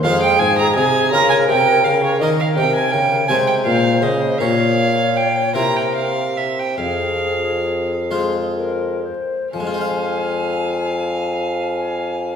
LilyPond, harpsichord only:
<<
  \new Staff \with { instrumentName = "Harpsichord" } { \time 6/8 \key f \minor \tempo 4. = 51 <aes f' c''>4. <f' bes'>4. | <ees' bes'>4. <aes ees' c''>4. | <g' des''>4. <e' c''>4. | r4. <aes f' c''>4. |
<f aes f' c'' f''>2. | }
  \new Staff \with { instrumentName = "Harpsichord" } { \clef bass \time 6/8 \key f \minor f,8 aes,8 c8 des8 c8 des8 | ees8 c8 des8 c8 bes,8 des8 | bes,4. c4. | f,2~ f,8 r8 |
r2. | }
>>